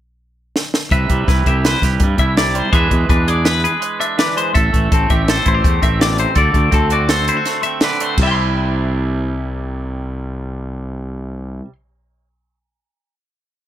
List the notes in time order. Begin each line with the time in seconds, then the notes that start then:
0.56 snare
0.74 snare
0.91 C2 C3 B4 E5, kick, closed hi-hat
1.10 C2 G3, kick, closed hi-hat
1.28 C2 E4 B4, kick, snare, closed hi-hat
1.46 C2 G4 E5, kick, closed hi-hat
1.65 B4 C5, snare, closed hi-hat
1.82 C2 G4, kick, snare, closed hi-hat
2.00 G2 G3, kick, closed hi-hat
2.18 C2 E4 E5, kick, closed hi-hat
2.37 C3 D5, snare, closed hi-hat
2.54 G3 C5, closed hi-hat
2.71 E2 E3 G#3 D4 G#4 B4 E5, kick, closed hi-hat
2.90 E2 G#3, kick, closed hi-hat
3.09 E2 D4 B4, kick, closed hi-hat
3.28 G#4 D5, closed hi-hat
3.45 B4, snare, closed hi-hat
3.64 G#4 B4, closed hi-hat
3.80 G#3, closed hi-hat
4.00 D4 E5, closed hi-hat
4.18 E3 B4 D5, snare, closed hi-hat
4.36 G#3 C5, closed hi-hat
4.53 A1 A2 A4 E5, kick, closed hi-hat
4.73 A1 A3, kick, closed hi-hat
4.92 A1 C4 A4, kick, closed hi-hat
5.10 A1 G4 E5, kick, closed hi-hat
5.28 A4 C5, snare, closed hi-hat
5.46 A1 E4 C5, kick, closed hi-hat
5.54 G4
5.63 E2 A3, kick, closed hi-hat
5.82 A1 C4 E5, kick, closed hi-hat
6.00 B2 D5, snare, closed hi-hat
6.18 C3 C5, closed hi-hat
6.35 D2 D3 A4 D5, kick, closed hi-hat
6.54 D2 A3, kick, closed hi-hat
6.71 D2 C4 A4, kick, closed hi-hat
6.90 F#4 D5, closed hi-hat
7.09 A4 C5, snare, closed hi-hat
7.28 E4 C5, closed hi-hat
7.37 F#4
7.45 A3, snare, closed hi-hat
7.63 C4 E5, closed hi-hat
7.81 D3 B4 D5, snare, closed hi-hat
8.00 A3 C5, closed hi-hat
8.18 C2 C3, kick, crash
8.22 G3 E4 G4 E5
8.27 G5 C6